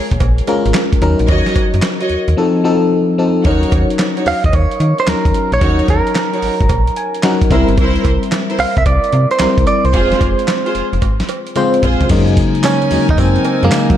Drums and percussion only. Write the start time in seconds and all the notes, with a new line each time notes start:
0.11 kick, closed hi-hat
0.20 kick, closed hi-hat, cowbell
0.38 closed hi-hat
0.47 closed hi-hat, cowbell
0.66 closed hi-hat
0.74 snare, clap, closed hi-hat, cowbell
0.93 kick, closed hi-hat
1.02 closed hi-hat
1.19 closed hi-hat
1.28 kick, closed hi-hat, cowbell
1.46 snare, closed hi-hat
1.56 kick, closed hi-hat, cowbell
1.74 closed hi-hat
1.82 snare, clap, closed hi-hat, cowbell
2.01 closed hi-hat
2.10 closed hi-hat
2.28 closed hi-hat
3.45 kick, closed hi-hat, cowbell
3.63 closed hi-hat
3.72 kick, closed hi-hat, cowbell
3.90 closed hi-hat
3.99 snare, clap, closed hi-hat, cowbell
4.17 closed hi-hat
4.26 open hi-hat
4.44 kick, closed hi-hat
4.53 kick, closed hi-hat, cowbell
4.71 closed hi-hat
4.80 closed hi-hat
4.98 closed hi-hat
5.07 snare, clap, closed hi-hat, cowbell
5.25 kick, closed hi-hat
5.34 closed hi-hat
5.52 closed hi-hat
5.61 kick, closed hi-hat, cowbell
5.79 closed hi-hat
5.88 kick, closed hi-hat, cowbell
6.07 closed hi-hat
6.15 snare, clap, closed hi-hat, cowbell
6.34 closed hi-hat
6.42 open hi-hat
6.61 kick, closed hi-hat
6.69 kick, closed hi-hat, cowbell
6.87 closed hi-hat
6.96 closed hi-hat
7.15 closed hi-hat
7.23 snare, clap, closed hi-hat, cowbell
7.42 kick, closed hi-hat
7.51 kick, closed hi-hat
7.69 closed hi-hat
7.78 kick, closed hi-hat, cowbell
7.96 closed hi-hat
8.05 kick, closed hi-hat, cowbell
8.23 closed hi-hat
8.32 snare, clap, closed hi-hat, cowbell
8.50 closed hi-hat
8.59 open hi-hat
8.77 kick, closed hi-hat
8.86 kick, closed hi-hat, cowbell
9.04 closed hi-hat
9.13 closed hi-hat
9.31 closed hi-hat
9.39 snare, clap, closed hi-hat, cowbell
9.58 kick, closed hi-hat
9.67 closed hi-hat
9.85 closed hi-hat
9.94 kick, closed hi-hat, cowbell
10.12 snare, closed hi-hat
10.21 kick, closed hi-hat, cowbell
10.39 closed hi-hat
10.48 snare, clap, closed hi-hat, cowbell
10.66 closed hi-hat
10.75 closed hi-hat
10.93 closed hi-hat
11.02 kick, closed hi-hat, cowbell
11.20 snare, closed hi-hat
11.29 closed hi-hat, cowbell
11.47 closed hi-hat
11.56 closed hi-hat, high tom, cowbell
11.74 closed hi-hat
11.83 closed hi-hat, mid tom
12.01 closed hi-hat, floor tom
12.09 kick, closed hi-hat, crash, tambourine, cowbell
12.28 closed hi-hat
12.37 kick, closed hi-hat, tambourine
12.55 closed hi-hat
12.63 snare, clap, closed hi-hat, tambourine, cowbell
12.82 closed hi-hat
12.91 open hi-hat, tambourine
13.09 kick, closed hi-hat
13.18 kick, closed hi-hat, tambourine, cowbell
13.36 closed hi-hat
13.45 closed hi-hat, cowbell
13.63 closed hi-hat
13.71 snare, clap, closed hi-hat, tambourine, cowbell
13.90 kick, closed hi-hat